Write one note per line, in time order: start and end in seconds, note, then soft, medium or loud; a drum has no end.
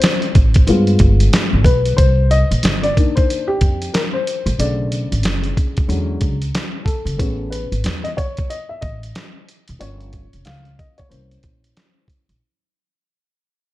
0.00 0.31 F3 medium
0.00 0.32 C4 medium
0.00 0.32 E4 medium
0.00 0.84 C5 medium
0.00 snare loud
0.00 closed hi-hat medium
0.22 closed hi-hat soft
0.35 0.62 A1 medium
0.35 kick loud
0.35 closed hi-hat medium
0.54 kick medium
0.54 closed hi-hat medium
0.67 0.94 G2 medium
0.67 1.94 G#3 medium
0.67 1.95 B3 soft
0.67 1.95 F4 medium
0.67 closed hi-hat medium
0.87 closed hi-hat soft
0.99 1.27 G1 medium
0.99 kick medium
0.99 closed hi-hat medium
1.20 closed hi-hat medium
1.33 snare loud
1.33 closed hi-hat loud
1.53 1.63 G#1 medium
1.64 1.92 B1 medium
1.64 1.99 B4 medium
1.64 kick medium
1.64 closed hi-hat medium
1.85 closed hi-hat medium
1.97 2.42 C2 medium
1.97 2.31 C5 loud
1.97 kick loud
1.97 closed hi-hat loud
2.31 2.85 D#5 loud
2.31 closed hi-hat medium
2.51 2.61 A#1 medium
2.51 closed hi-hat soft
2.63 2.90 G1 medium
2.63 snare loud
2.63 closed hi-hat medium
2.83 3.17 D5 medium
2.83 closed hi-hat soft
2.96 4.55 D#3 medium
2.96 4.55 A#3 soft
2.96 4.56 D4 medium
2.96 kick medium
2.96 closed hi-hat medium
3.16 3.49 C5 medium
3.16 kick medium
3.16 closed hi-hat soft
3.30 closed hi-hat medium
3.48 3.95 G4 loud
3.61 3.88 F2 medium
3.61 kick medium
3.61 closed hi-hat medium
3.82 closed hi-hat medium
3.94 3.99 A#4 medium
3.94 snare loud
3.94 closed hi-hat medium
4.13 4.60 C5 medium
4.27 closed hi-hat medium
4.46 4.57 A1 medium
4.46 closed hi-hat medium
4.58 5.02 B1 medium
4.58 5.86 C#3 medium
4.58 5.85 D3 medium
4.58 5.86 A3 soft
4.58 5.20 D5 medium
4.58 closed hi-hat loud
4.92 closed hi-hat medium
5.12 5.24 A1 medium
5.12 closed hi-hat soft
5.23 5.51 F#1 medium
5.23 snare loud
5.23 closed hi-hat medium
5.44 closed hi-hat soft
5.57 kick medium
5.57 closed hi-hat medium
5.77 kick medium
5.77 closed hi-hat soft
5.88 6.16 E2 loud
5.88 6.35 D3 medium
5.88 6.35 F#3 soft
5.88 6.35 G#3 soft
5.88 6.35 C#4 medium
5.88 closed hi-hat medium
6.21 6.49 C#2 medium
6.21 kick medium
6.21 closed hi-hat medium
6.42 closed hi-hat medium
6.55 snare loud
6.55 closed hi-hat medium
6.85 7.53 A4 medium
6.85 kick medium
6.85 closed hi-hat medium
7.05 7.20 F#1 medium
7.05 closed hi-hat soft
7.18 7.63 A1 loud
7.18 7.65 B3 soft
7.18 7.66 C#4 medium
7.18 7.65 G#4 medium
7.18 kick loud
7.18 closed hi-hat loud
7.50 8.05 B4 medium
7.50 closed hi-hat medium
7.72 7.83 G#1 medium
7.72 closed hi-hat soft
7.84 8.12 E2 medium
7.84 snare medium
7.84 closed hi-hat medium
8.04 8.09 D#5 medium
8.04 closed hi-hat soft
8.17 8.51 C#5 medium
8.17 kick medium
8.17 closed hi-hat medium
8.37 kick medium
8.37 closed hi-hat soft
8.50 8.71 D#5 medium
8.50 closed hi-hat medium
8.69 8.82 E5 medium
8.81 9.10 A1 medium
8.81 9.83 D#5 medium
8.81 kick medium
8.81 closed hi-hat medium
9.03 closed hi-hat soft
9.15 snare loud
9.15 closed hi-hat medium
9.49 closed hi-hat medium
9.68 9.79 E1 medium
9.68 closed hi-hat medium
9.79 10.24 G1 medium
9.79 11.06 F3 soft
9.79 11.07 A#3 soft
9.79 11.07 C#4 medium
9.79 10.48 C#5 medium
9.79 closed hi-hat medium
10.01 closed hi-hat soft
10.13 kick medium
10.13 closed hi-hat medium
10.33 10.44 F1 medium
10.33 closed hi-hat soft
10.45 10.73 C#2 medium
10.45 10.79 F5 medium
10.45 snare loud
10.45 closed hi-hat medium
10.65 closed hi-hat soft
10.79 10.99 D#5 medium
10.79 kick medium
10.79 closed hi-hat medium
10.98 11.11 C#5 medium
10.98 kick medium
10.98 closed hi-hat soft
11.09 11.38 C2 medium
11.09 12.36 E3 soft
11.09 12.37 A#3 soft
11.09 12.37 C#4 medium
11.09 12.04 C5 medium
11.09 closed hi-hat medium
11.31 closed hi-hat soft
11.43 11.71 A#1 medium
11.43 kick medium
11.43 closed hi-hat medium
11.64 closed hi-hat soft
11.77 snare loud
11.77 closed hi-hat medium
12.08 kick medium
12.08 closed hi-hat medium
12.29 12.39 A#1 medium
12.29 closed hi-hat soft